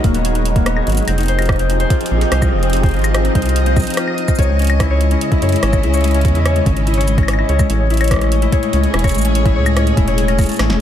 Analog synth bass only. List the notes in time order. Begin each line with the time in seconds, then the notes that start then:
0.04 D#1
0.87 G#1
1.08 F1
2.11 A#1
2.32 C2
2.52 F1
2.94 G#1
3.35 C2
3.77 C2
4.39 C#2
5.42 F#2
5.63 G#1
5.83 C#2
6.25 E2
6.66 G#1
7.49 C#2
7.70 A1
8.73 C#2
8.94 E1
9.14 A1
9.56 C#2
9.97 E1
10.39 E1
10.59 A1
10.70 E1